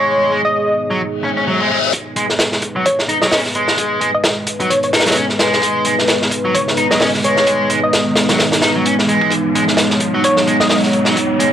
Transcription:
0.00 0.31 G#3 medium
0.00 1.90 G#3 medium
0.00 1.90 B3 medium
0.00 1.89 D#4 medium
0.00 1.92 G#4 medium
0.00 0.32 C#5 medium
0.32 0.40 G#3 loud
0.45 0.91 D#5 medium
0.91 1.00 F#3 medium
1.01 reverse cymbal medium
1.24 1.29 C#4 medium
1.37 1.43 C#4 medium
1.47 1.59 F#3 loud
1.61 1.67 G#3 medium
1.71 1.75 G#3 medium
1.93 11.53 G#3 medium
1.93 11.53 B3 medium
1.93 11.53 D#4 medium
1.93 9.31 B4 medium
1.93 kick medium
1.93 closed hi-hat medium
1.93 riser medium
2.16 2.24 G#3 loud
2.16 closed hi-hat medium
2.30 snare soft
2.39 snare loud
2.39 closed hi-hat medium
2.52 snare soft
2.62 kick medium
2.62 closed hi-hat medium
2.76 2.85 F#3 medium
2.86 3.00 C#5 medium
2.86 kick loud
2.86 closed hi-hat medium
2.99 snare soft
3.09 3.17 D#4 loud
3.09 closed hi-hat medium
3.22 3.31 F#3 medium
3.22 3.28 D#5 medium
3.22 snare medium
3.31 3.40 C#4 medium
3.31 3.41 D#5 medium
3.31 snare loud
3.31 open hi-hat medium
3.45 snare soft
3.55 4.00 G#3 medium
3.55 closed hi-hat medium
3.68 snare medium
3.78 kick loud
3.78 closed hi-hat medium
4.01 4.09 G#3 medium
4.01 closed hi-hat medium
4.14 4.21 D#5 medium
4.24 4.33 D#5 medium
4.24 snare loud
4.24 closed hi-hat medium
4.47 kick medium
4.47 closed hi-hat medium
4.60 4.70 F#3 medium
4.60 closed hi-hat soft
4.70 4.79 C#5 medium
4.70 closed hi-hat medium
4.83 4.90 C#5 medium
4.83 closed hi-hat soft
4.93 5.01 D#4 loud
4.93 snare medium
4.93 closed hi-hat medium
5.00 snare medium
5.00 closed hi-hat medium
5.06 5.16 F#3 medium
5.06 snare medium
5.06 closed hi-hat medium
5.11 snare medium
5.11 closed hi-hat medium
5.15 5.25 C#4 loud
5.15 closed hi-hat medium
5.29 snare soft
5.39 5.85 G#3 medium
5.39 snare medium
5.39 closed hi-hat medium
5.53 snare soft
5.62 kick loud
5.62 closed hi-hat medium
5.85 5.94 G#3 loud
5.85 closed hi-hat medium
5.99 snare soft
6.08 snare loud
6.08 closed hi-hat medium
6.22 snare medium
6.31 kick medium
6.31 closed hi-hat medium
6.45 6.54 F#3 medium
6.55 6.69 C#5 medium
6.55 kick loud
6.55 closed hi-hat medium
6.68 snare soft
6.77 6.86 D#4 loud
6.77 closed hi-hat medium
6.91 7.00 F#3 medium
6.91 6.98 D#5 medium
6.91 snare medium
7.00 7.09 C#4 loud
7.00 7.10 D#5 medium
7.00 snare loud
7.00 open hi-hat medium
7.14 snare soft
7.24 7.69 G#3 medium
7.24 7.71 C#5 medium
7.24 closed hi-hat medium
7.37 snare soft
7.47 kick loud
7.47 closed hi-hat medium
7.70 7.78 G#3 loud
7.70 closed hi-hat medium
7.83 8.30 D#5 medium
7.93 snare loud
7.93 closed hi-hat medium
8.16 snare loud
8.16 closed hi-hat medium
8.29 8.39 F#3 medium
8.29 snare loud
8.29 closed hi-hat medium
8.39 snare loud
8.39 closed hi-hat medium
8.52 snare medium
8.52 closed hi-hat medium
8.62 8.70 D#4 loud
8.62 snare loud
8.62 closed hi-hat medium
8.76 8.85 F#3 medium
8.86 8.94 C#4 loud
8.86 closed hi-hat medium
8.99 snare soft
9.08 9.32 G#3 medium
9.08 closed hi-hat medium
9.21 kick medium
9.31 11.53 C#5 medium
9.31 kick loud
9.31 closed hi-hat medium
9.55 9.63 G#3 medium
9.55 closed hi-hat medium
9.68 snare soft
9.77 snare loud
9.77 closed hi-hat medium
9.90 snare soft
10.00 kick loud
10.00 closed hi-hat medium
10.14 10.23 F#3 medium
10.24 10.39 C#5 medium
10.24 kick loud
10.24 closed hi-hat medium
10.37 snare soft
10.47 10.55 G#3 medium
10.47 closed hi-hat medium
10.60 10.67 D#5 medium
10.60 snare medium
10.70 10.79 D#5 medium
10.70 snare loud
10.70 open hi-hat medium
10.83 snare soft
10.93 closed hi-hat medium
11.05 11.15 F#3 medium
11.05 snare medium
11.16 kick loud
11.16 closed hi-hat medium
11.39 11.47 G#3 loud
11.39 closed hi-hat medium

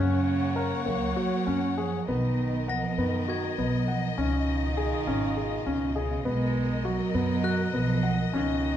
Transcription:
0.00 0.70 F#2 medium
0.00 0.88 C#3 medium
0.00 2.06 A#3 medium
0.00 0.40 C#4 medium
0.00 2.06 C#5 medium
0.00 2.06 F#5 medium
0.00 0.23 F6 medium
0.00 0.22 F#6 medium
0.56 0.78 A#4 medium
0.86 1.11 C#2 medium
0.86 1.79 F#3 medium
0.86 1.08 A#3 medium
1.16 1.39 F#4 medium
1.47 1.98 F#2 medium
1.47 1.70 C#4 medium
1.78 2.08 F3 medium
1.78 2.00 G#4 medium
2.07 2.83 B1 medium
2.07 2.71 D#3 medium
2.07 4.16 B3 medium
2.07 2.53 B3 medium
2.07 4.15 A#4 medium
2.07 6.22 D#5 medium
2.68 3.01 F3 medium
2.68 2.91 F#5 medium
2.68 4.44 A#6 medium
2.98 3.48 F#2 medium
2.98 3.59 D#3 medium
2.98 3.21 B3 medium
3.28 3.50 F#4 medium
3.28 4.44 G#6 soft
3.57 4.08 B1 medium
3.57 3.89 F#3 medium
3.57 3.80 B3 medium
3.87 4.17 F3 medium
3.87 4.10 F#5 medium
4.17 4.92 C#2 medium
4.17 8.77 B2 medium
4.17 5.97 D#3 medium
4.17 4.62 C#4 medium
4.17 6.23 F4 medium
4.77 4.99 G#4 medium
5.07 5.56 G#1 medium
5.07 5.29 C#4 medium
5.37 5.59 G#4 medium
5.66 6.15 C#2 medium
5.66 5.88 C#4 medium
5.96 6.25 C#3 medium
5.96 6.18 G#4 medium
6.25 6.99 B1 medium
6.25 6.87 G#3 medium
6.25 6.70 B3 medium
6.25 8.32 A#4 medium
6.25 8.77 D#5 medium
6.85 7.74 F#3 medium
6.85 7.07 F#4 medium
7.14 7.64 F#2 medium
7.14 7.37 B3 medium
7.44 7.66 F#4 medium
7.44 8.60 F#6 medium
7.73 8.23 B1 medium
7.73 8.30 F3 medium
7.73 7.96 B3 medium
8.03 8.26 F#5 medium
8.33 8.77 C#2 medium
8.33 8.77 D#3 medium
8.33 8.77 C#4 medium
8.33 8.77 F4 medium

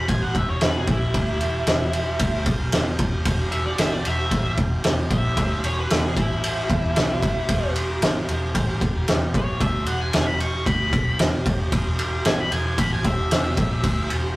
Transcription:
0.08 0.33 A1 medium
0.08 0.22 G#5 medium
0.08 kick medium
0.08 ride medium
0.22 0.37 F#5 medium
0.35 0.60 E1 medium
0.35 0.49 E5 medium
0.35 kick medium
0.35 ride medium
0.50 0.64 C#5 medium
0.61 0.86 E1 medium
0.61 0.78 B4 medium
0.61 snare loud
0.61 ride medium
0.78 0.89 G#4 medium
0.87 1.12 A#1 medium
0.87 2.44 E4 medium
0.87 kick loud
0.87 ride medium
1.14 1.39 D2 medium
1.14 kick loud
1.14 ride medium
1.40 1.65 E1 medium
1.40 ride medium
1.67 2.16 E1 medium
1.67 snare loud
1.67 ride medium
1.93 ride medium
2.19 2.45 D2 medium
2.19 kick loud
2.19 ride loud
2.46 2.71 B1 medium
2.46 kick loud
2.46 ride medium
2.72 2.98 E1 medium
2.72 snare loud
2.72 ride medium
2.99 3.24 E1 medium
2.99 kick loud
2.99 ride medium
3.25 3.75 E1 medium
3.25 kick loud
3.25 ride loud
3.52 3.65 E5 loud
3.52 ride medium
3.66 3.80 D5 medium
3.78 4.03 G1 medium
3.78 3.93 E5 medium
3.78 snare loud
3.78 ride loud
3.93 4.07 D5 medium
4.05 4.30 E1 medium
4.05 4.57 E5 loud
4.05 ride medium
4.31 4.56 A1 medium
4.31 kick loud
4.31 ride medium
4.57 4.82 E1 loud
4.57 kick loud
4.57 ride medium
4.84 5.09 E1 medium
4.84 snare loud
4.84 ride medium
5.11 5.35 A#1 medium
5.11 5.63 E5 medium
5.11 kick loud
5.11 ride medium
5.37 5.62 D2 medium
5.37 kick loud
5.37 ride medium
5.64 5.88 E1 medium
5.64 5.77 C#5 medium
5.64 ride medium
5.80 6.04 B4 medium
5.90 6.15 E1 medium
5.90 snare loud
5.90 ride medium
6.05 6.17 G#4 loud
6.17 6.66 A1 medium
6.17 7.72 E4 medium
6.17 kick loud
6.17 ride medium
6.44 ride medium
6.70 6.94 E2 medium
6.70 kick loud
6.70 ride medium
6.96 7.21 B1 medium
6.96 snare loud
6.96 ride loud
7.23 7.47 G1 medium
7.23 kick loud
7.23 ride medium
7.49 7.98 E1 medium
7.49 kick loud
7.49 ride loud
7.76 ride medium
8.01 8.26 G1 medium
8.01 snare loud
8.01 ride medium
8.28 8.53 E1 medium
8.28 ride medium
8.55 8.79 A1 medium
8.55 kick medium
8.55 ride medium
8.81 9.06 E1 medium
8.81 kick loud
8.81 ride medium
9.08 9.32 E1 medium
9.08 snare loud
9.08 ride medium
9.34 9.59 A#1 medium
9.34 9.61 C#5 medium
9.34 kick loud
9.34 ride medium
9.61 9.85 D2 medium
9.61 9.87 E5 medium
9.61 kick loud
9.61 ride medium
9.86 10.12 E1 medium
9.86 10.01 F#5 loud
9.86 ride medium
10.01 10.26 G#5 medium
10.13 10.63 E1 loud
10.13 snare loud
10.13 ride medium
10.26 10.40 B5 loud
10.40 10.65 C#6 medium
10.40 ride medium
10.66 10.91 D2 medium
10.66 11.18 B5 medium
10.66 kick loud
10.66 ride medium
10.93 11.17 B1 medium
10.93 kick loud
10.93 ride medium
11.19 11.44 E1 medium
11.19 snare loud
11.19 ride medium
11.46 11.71 E1 medium
11.46 kick loud
11.46 ride medium
11.72 12.21 E1 medium
11.72 kick loud
11.72 ride medium
11.99 ride medium
12.25 12.50 G1 medium
12.25 12.40 G#5 medium
12.25 snare loud
12.25 ride medium
12.40 12.52 B5 medium
12.51 12.76 E1 medium
12.51 12.65 G#5 loud
12.51 ride medium
12.66 12.78 G#5 medium
12.78 13.03 A1 medium
12.78 12.92 B5 loud
12.78 kick medium
12.78 ride medium
12.93 13.05 G#5 medium
13.04 13.29 E1 medium
13.04 14.08 E5 loud
13.04 kick loud
13.04 ride medium
13.31 13.55 E1 medium
13.31 snare loud
13.31 ride medium
13.57 13.82 A#1 loud
13.57 kick loud
13.57 ride medium
13.83 14.08 D2 medium
13.83 kick loud
13.83 ride medium
14.10 14.35 E1 medium
14.10 ride medium

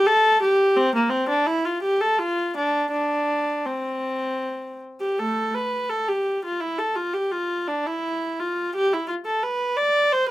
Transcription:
0.07 0.42 A4 loud
0.42 0.77 G4 medium
0.77 0.95 C4 medium
0.95 1.13 A#3 medium
1.10 1.29 C4 medium
1.29 1.47 D4 medium
1.46 1.65 E4 medium
1.65 1.83 F4 medium
1.83 2.01 G4 medium
2.01 2.19 A4 medium
2.19 2.56 F4 medium
2.57 2.90 D4 medium
2.91 3.66 D4 medium
3.65 4.79 C4 medium
5.01 5.17 G4 medium
5.19 5.52 A3 soft
5.19 5.54 A4 medium
5.54 5.89 B4 medium
5.90 6.07 A4 medium
6.08 6.43 G4 medium
6.45 6.61 F4 medium
6.60 6.78 E4 medium
6.78 6.96 A4 medium
6.95 7.14 F4 medium
7.13 7.32 G4 medium
7.32 7.67 F4 medium
7.68 7.85 D4 medium
7.87 8.38 E4 medium
8.40 8.74 F4 medium
8.75 8.91 G4 medium
8.93 9.09 E4 medium
9.08 9.15 F4 medium
9.26 9.42 A4 medium
9.43 9.77 B4 medium
9.77 10.11 D5 medium
10.12 10.29 C5 medium

